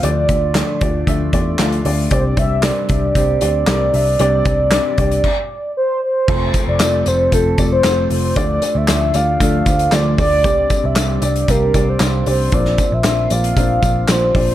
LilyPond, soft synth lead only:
\new Staff \with { instrumentName = "Soft synth lead" } { \time 4/4 \key f \major \tempo 4 = 115 d''2 r2 | c''8 e''8 d''8 d''2~ d''8~ | d''2. c''8 c''8~ | c''8. d''8. c''8 a'8. c''8. c''8 |
d''8. e''8. f''4. d''8 d''8~ | d''8. e''8. d''8 bes'8. c''8. c''8 | d''8. e''8. f''4. c''8 c''8 | }